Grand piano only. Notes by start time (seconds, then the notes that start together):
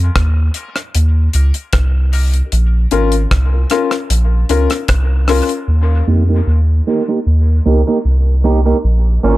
0.36 G4 A#4
0.54 D#4 G4 A#4
1.33 D#4 G4 A#4
1.55 G4 A#4
2.12 D#4 G4 A#4
2.91 C#4 F4 A#4
3.52 F4 A#4
3.71 C#4 F4 A#4
4.50 C#4 F4 A#4
4.71 F4 A#4
5.28 C#4 F4 A#4